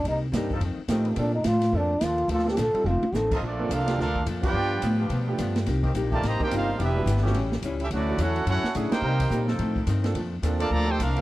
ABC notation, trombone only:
X:1
M:4/4
L:1/16
Q:"Swing" 1/4=214
K:Bb
V:1 name="Trombone"
E2 z12 z2 | D2 E2 F4 D4 F4 | F2 G2 A4 F4 A3 z | z16 |
z16 | z16 | z16 | z16 |
z16 | z16 |]